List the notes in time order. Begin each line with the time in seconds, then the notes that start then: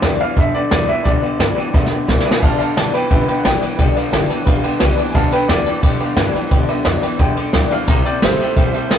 0.02 E2 G2 D3 E3 F3 B3 D4 G4 B4 D5 G5, snare, closed hi-hat
0.19 G2 E3 F3 B3 D4 G4 B4 D5 F5 G5, muted upright bass stroke, closed hi-hat
0.37 F2 G2 D3 F3 B3 D4 G4 B4 D5 E5 A5, kick, closed hi-hat
0.53 G2 D3 F3 B3 D4 G4 B4 D5 G5, muted upright bass stroke, closed hi-hat
0.70 E2 G2 D3 E3 F3 B3 D4 G4 B4 D5 G5, snare, closed hi-hat
0.87 G2 E3 B3 D4 G4 B4 D5 E5 G5, muted upright bass stroke, closed hi-hat
0.92 F3
1.04 D2 G2 D3 F3 B3 D4 G4 B4 D5 G5, kick, closed hi-hat
1.21 G2 D3 D4 G4 B4 D5 F5, muted upright bass stroke, closed hi-hat
1.25 F3 B3
1.39 G2 D3 E3 F3 B3 D4 G4 B4 D5 G5, snare, closed hi-hat
1.55 G2 E3 B3 D4 G4 B4 D5 G5, muted upright bass stroke, closed hi-hat
1.60 F3
1.74 E2 G2 D3 F3 B3 D4 B4 D5 E5, kick, snare
1.78 G4
1.86 B4, snare
1.91 G2 D3 F3 B3 D4 G4 D5 G5, muted upright bass stroke
2.07 D2 G2 D3 E3 F3 B3 D4 G4 B4 D5 F5, kick, snare
2.20 snare
2.25 G2 E3 F3 B3 D4 G4 B4 D5 E5, muted upright bass stroke
2.31 snare
2.39 G1 G2 D3 F3 B4 F5 G#5, kick, crash
2.43 B3 D4 G4 D5 G5 A5
2.59 G2 D3 F3 B3 D4 G4 B4 D5 F5 A5, muted upright bass stroke, ride
2.76 B1 G2 D3 E3 F3 B3 D4 G4 B4 D5 F5 G5 A5, snare, ride
2.93 G2 E3 F3 B3 D4 G4 B4 D5 G5, muted upright bass stroke, ride
3.10 G1 G2 D3 F3 B3 D4 G4 B4 D5 E5 G5, kick, ride
3.27 G2 D3 F3 B3 D4 G4 B4 D5 F5 G5, muted upright bass stroke, ride
3.39 F#5 G5
3.43 A1 G2 D3 E3 F3 B3 D4 G4 B4 D5 G5, snare, ride
3.61 G2 E3 F3 B3 D4 G4 B4 D5 G5, muted upright bass stroke, ride
3.76 B1 G2 D3 F3 B3 B4 D5 G5, kick, ride
3.80 D4 G4
3.94 G2 D3 F3 B3 D4 G4 B4 D5 F5, muted upright bass stroke, ride
4.11 G1 G2 D3 E3 F3 B3 D4 G4 B4 D5 A5, snare, ride
4.28 G2 E3 F3 B3 D4 G4 B4 D5 A5, muted upright bass stroke, ride
4.45 A1 G2 D3 F3 B3 D4 B4 D5 F5, kick, ride
4.50 G4
4.63 G2 D3 F3 B3 D4 G4 B4 D5 G5, muted upright bass stroke, ride
4.78 B1 G2 E3 B4 D5 G5, snare, ride
4.83 G2 D3 F3 B3 D4 G4
4.95 G2 E3 G4 B4 D5 A5, muted upright bass stroke, ride
4.99 F3 B3 D4
5.12 D2 G2 B4 D5 F5 G5 G#5, kick, ride
5.16 G2 D3 F3 B3 D4 G4 A5
5.31 G2 D3 B3 D4 G4 B4 D5 G5, muted upright bass stroke, ride
5.35 F3
5.48 E2 G2 D3 E3 F3 B3 D4 G4 B4 D5 G5, snare, ride
5.64 G2 E3 D4 G4 B4 D5 A5, muted upright bass stroke, ride
5.69 F3 B3
5.82 F2 G2 D3 F3 B3 D4 G4 B4 D5 G5, kick, ride
5.99 G2 D3 F3 B3 D4 G4 B4 D5 F5, muted upright bass stroke, ride
6.16 G2 D3 E3 F3 B3 D4 G4 B4 D5 G5, snare, ride
6.33 G2 E3 D4 G4 B4 D5 G5, muted upright bass stroke, ride
6.38 F3 B3
6.49 D2 G2 D3 F3 B3 G4 B4 D5 G5, kick, ride
6.54 D4
6.68 G2 D3 B3 D4 G4 B4 D5 E5, muted upright bass stroke, ride
6.72 F3
6.84 F2 G2 D3 E3 F3 B3 D4 G4 B4 D5 E5, snare, ride
7.02 G2 E3 F3 B3 D4 G4 B4 D5 G5, muted upright bass stroke, snare, ride
7.19 E2 G2 D3 F3 B3 D4 G4 B4 D5 G5, kick, ride
7.35 G2 D3 B3 D4 G4 B4 D5 G5, muted upright bass stroke, ride
7.39 F3
7.52 D2 G2 D3 E3 F3 B4 D5 E5, snare, ride
7.56 B3 D4 G4
7.69 G2 E3 B3 D4 G4 B4 D5 F5 G5, muted upright bass stroke, ride
7.73 F3
7.87 C2 C3 G3 C5 E5 G5 A#5, kick, ride
7.91 A#3 E4 G4
8.03 C3 G3 G4 C5 D5 E5 G5, muted upright bass stroke, ride
8.07 A#3 E4
8.20 G1 C3 G3 A3 A#3 E4 C5 G5, snare, ride
8.25 E4 G4
8.37 C3 A3 C5 E5 G5, muted upright bass stroke, ride
8.41 A#3 E4 G4
8.55 A1 C3 G3 A#3 E4 C5 E5 G5, kick, ride
8.60 G4
8.73 C3 G3 E4 G4 C5 E5 A5, muted upright bass stroke, ride
8.77 A#3
8.89 A#1 C3 G3 A3 A#3 E4 G4 C5 E5 G5, snare, ride